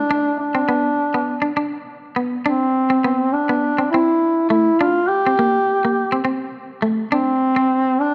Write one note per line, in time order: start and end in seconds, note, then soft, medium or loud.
0.00 0.39 D4 loud
0.11 0.31 D4 medium
0.40 1.53 D4 medium
0.55 0.64 C4 medium
0.69 0.89 B3 medium
1.14 1.34 B3 medium
1.42 1.52 D4 medium
1.57 1.77 D4 medium
2.16 2.36 B3 medium
2.46 3.35 C4 loud
2.46 2.65 D4 loud
2.90 2.99 C4 medium
3.04 3.24 B3 medium
3.33 3.90 D4 medium
3.49 3.69 B3 medium
3.78 3.87 C4 medium
3.91 4.13 C4 medium
3.91 4.45 E4 loud
4.49 4.70 A3 medium
4.49 4.82 E4 loud
4.80 5.00 D4 medium
4.80 5.10 F4 loud
5.08 6.25 G4 loud
5.27 5.35 C4 medium
5.39 5.58 A#3 medium
5.85 6.04 A#3 medium
6.12 6.21 C4 medium
6.25 6.45 C4 medium
6.82 7.03 A3 medium
7.12 8.02 C4 loud
7.12 7.32 D4 loud
7.56 7.66 C4 medium
8.01 8.14 D4 loud